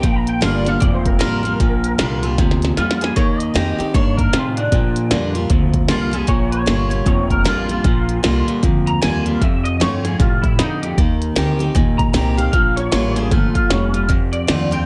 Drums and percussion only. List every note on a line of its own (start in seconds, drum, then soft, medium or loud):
0.03 kick loud
0.03 closed hi-hat medium
0.27 closed hi-hat medium
0.42 snare loud
0.42 closed hi-hat medium
0.66 snare soft
0.66 closed hi-hat medium
0.82 kick loud
0.82 closed hi-hat medium
1.06 kick medium
1.06 closed hi-hat medium
1.21 snare loud
1.21 closed hi-hat medium
1.45 closed hi-hat medium
1.60 kick loud
1.60 closed hi-hat medium
1.84 closed hi-hat medium
1.99 snare loud
1.99 closed hi-hat medium
2.23 closed hi-hat medium
2.38 kick loud
2.38 snare medium
2.38 closed hi-hat medium
2.51 snare medium
2.62 snare medium
2.62 closed hi-hat medium
2.77 snare medium
2.77 closed hi-hat medium
2.91 snare loud
3.01 snare medium
3.01 closed hi-hat medium
3.17 kick loud
3.17 closed hi-hat medium
3.40 closed hi-hat medium
3.56 snare loud
3.56 closed hi-hat medium
3.80 snare soft
3.80 closed hi-hat medium
3.95 kick loud
3.95 snare soft
3.95 closed hi-hat medium
4.18 kick medium
4.18 closed hi-hat medium
4.33 snare loud
4.33 closed hi-hat medium
4.57 closed hi-hat medium
4.72 kick loud
4.72 closed hi-hat medium
4.96 closed hi-hat medium
5.11 snare loud
5.11 closed hi-hat medium
5.35 closed hi-hat medium
5.50 kick loud
5.50 closed hi-hat loud
5.74 kick medium
5.74 closed hi-hat medium
5.88 snare loud
5.88 closed hi-hat medium
6.13 closed hi-hat medium
6.28 kick loud
6.28 closed hi-hat medium
6.52 closed hi-hat medium
6.67 snare loud
6.67 closed hi-hat medium
6.91 closed hi-hat medium
7.06 kick loud
7.06 closed hi-hat medium
7.30 kick medium
7.30 closed hi-hat medium
7.45 snare loud
7.45 closed hi-hat medium
7.69 closed hi-hat medium
7.84 kick loud
7.84 snare soft
7.84 closed hi-hat medium
8.09 closed hi-hat medium
8.24 snare loud
8.24 closed hi-hat medium
8.48 closed hi-hat medium
8.63 kick loud
8.63 closed hi-hat medium
8.87 closed hi-hat medium
9.03 snare loud
9.03 closed hi-hat medium
9.26 closed hi-hat medium
9.41 kick loud
9.41 closed hi-hat medium
9.65 closed hi-hat medium
9.81 snare loud
9.81 closed hi-hat medium
10.05 snare soft
10.05 closed hi-hat medium
10.20 kick loud
10.20 snare soft
10.20 closed hi-hat medium
10.44 kick medium
10.44 closed hi-hat medium
10.59 snare loud
10.59 closed hi-hat medium
10.83 closed hi-hat medium
10.98 kick loud
10.98 closed hi-hat medium
11.22 closed hi-hat medium
11.36 snare loud
11.36 closed hi-hat medium
11.60 closed hi-hat medium
11.75 kick loud
11.75 snare soft
11.75 closed hi-hat medium
11.99 kick medium
11.99 closed hi-hat medium
12.14 snare loud
12.14 closed hi-hat medium
12.38 closed hi-hat medium
12.53 kick loud
12.53 snare soft
12.53 closed hi-hat medium
12.77 snare soft
12.77 closed hi-hat medium
12.92 snare loud
12.92 closed hi-hat medium
13.16 snare soft
13.16 closed hi-hat medium
13.31 kick loud
13.31 snare soft
13.31 closed hi-hat medium
13.55 kick medium
13.55 closed hi-hat medium
13.70 snare loud
13.70 closed hi-hat medium
13.94 closed hi-hat medium
14.10 kick medium
14.10 closed hi-hat medium
14.33 closed hi-hat medium
14.48 snare loud
14.48 closed hi-hat medium
14.72 closed hi-hat medium